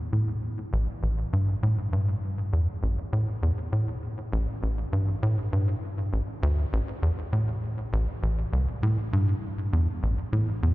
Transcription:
0.13 0.35 A2 medium
0.73 0.88 A1 loud
1.03 1.25 A1 medium
1.33 1.55 G2 medium
1.63 1.78 A2 medium
1.93 2.15 G2 medium
2.53 2.68 E2 medium
2.83 2.98 A1 medium
3.13 3.28 A2 medium
3.43 3.52 E2 medium
3.73 3.95 A2 medium
4.33 4.48 A1 loud
4.63 4.85 A1 medium
4.93 5.15 G2 medium
5.23 5.38 A2 medium
5.53 5.75 G2 medium
6.13 6.22 A1 medium
6.43 6.65 D2 loud
6.73 6.82 A1 loud
7.03 7.12 E2 medium
7.33 7.55 A2 medium
7.93 8.08 A1 loud
8.23 8.45 A1 medium
8.53 8.68 C2 medium
8.83 8.98 A2 medium
9.13 9.35 G2 medium
9.73 9.88 E2 medium
10.03 10.18 A1 medium
10.33 10.48 A2 medium
10.63 10.72 E2 medium

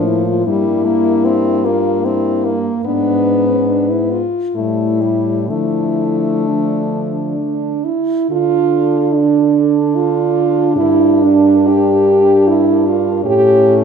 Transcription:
0.00 0.46 A2 medium
0.00 0.46 F3 medium
0.00 0.45 A#3 medium
0.07 0.27 E4 medium
0.27 0.48 F4 medium
0.46 2.69 G2 medium
0.46 0.87 G3 medium
0.46 2.01 A#3 medium
0.46 1.66 E4 medium
0.86 1.26 A#3 medium
1.25 1.66 C4 medium
1.64 2.06 A#3 medium
1.64 2.06 F4 medium
2.03 2.87 A#3 medium
2.03 2.46 C4 medium
2.03 2.58 E4 medium
2.44 2.84 A#3 medium
2.85 4.23 G#2 medium
2.85 4.22 B3 medium
2.85 4.26 B3 medium
2.85 3.49 D4 medium
3.47 3.68 C#4 medium
3.67 3.92 D4 medium
3.90 4.13 E4 medium
4.11 4.57 F4 medium
4.55 5.51 A2 medium
4.55 5.45 G3 soft
4.55 5.02 A3 medium
4.55 5.48 E4 medium
5.01 5.51 G3 soft
5.49 7.95 D3 medium
5.49 6.46 F3 soft
5.49 7.84 A3 medium
5.49 6.51 E4 medium
6.47 7.37 F3 soft
6.47 7.85 D4 medium
7.38 7.86 D4 medium
7.85 8.30 E4 medium
8.30 10.79 D3 medium
8.30 13.21 D4 medium
8.30 9.16 F4 medium
8.30 10.73 A4 medium
9.15 9.97 D4 medium
9.95 10.76 F4 medium
10.76 13.24 G2 medium
10.76 11.25 E4 medium
10.76 13.27 A#4 medium
11.23 11.69 D4 medium
11.67 12.49 G4 medium
12.48 12.88 E4 medium
12.86 13.25 F4 medium
13.23 13.84 A2 medium
13.23 13.84 C#4 medium
13.23 13.75 G4 loud
13.23 13.84 A4 medium

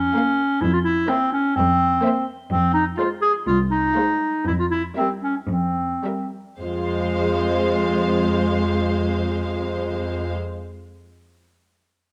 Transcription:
0.00 0.63 C#4 medium
0.16 0.50 A#3 soft
0.16 0.51 A#4 soft
0.16 0.50 F5 soft
0.62 1.00 F2 medium
0.62 0.73 E4 medium
0.73 0.79 F4 medium
0.84 1.10 E4 medium
1.09 1.45 A#3 soft
1.09 1.32 C4 medium
1.09 1.45 C5 medium
1.09 1.45 E5 soft
1.32 1.55 C#4 medium
1.56 1.94 F2 medium
1.56 2.25 C4 medium
2.04 2.39 A#3 medium
2.04 2.39 C5 medium
2.04 2.39 E5 medium
2.50 2.89 F2 medium
2.50 2.72 C4 medium
2.74 2.85 D#4 medium
2.97 3.35 G#3 soft
2.97 3.08 F4 medium
2.97 3.35 C5 soft
2.97 3.35 F5 medium
3.22 3.33 G#4 medium
3.47 3.86 C2 medium
3.47 3.58 F4 medium
3.71 4.45 D#4 medium
3.96 4.34 G#3 medium
3.96 4.34 C5 medium
3.96 4.34 F5 soft
4.47 4.87 F2 medium
4.47 4.52 E4 medium
4.59 4.65 F4 medium
4.71 4.83 E4 medium
4.97 5.37 G3 soft
4.97 5.09 C4 medium
4.97 5.36 A#4 soft
4.97 5.36 E5 soft
5.23 5.35 C#4 medium
5.50 5.93 F2 soft
5.50 6.30 C4 soft
6.05 6.46 G3 soft
6.05 6.46 A#4 soft
6.05 6.46 E5 soft
6.60 10.33 F2 soft
6.60 10.33 G#3 soft
6.60 10.33 F4 soft
6.60 10.34 C5 soft
6.60 10.34 F5 soft

